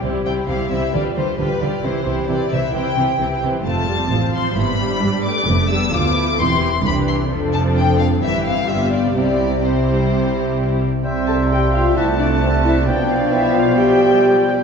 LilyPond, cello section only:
\new Staff \with { instrumentName = "Cello section" } { \clef bass \time 4/4 \key c \major \tempo 4 = 132 c8 c8 c8 c8 d8 d8 d8 d8 | c8 c8 c8 c8 c8 c8 c8 c8 | f,4 a,4 g,4 g4 | f,4 d,4 e,4 c,4 |
f,2 g,4 g,4 | c2.~ c8 r8 | c2 c2 | b,1 | }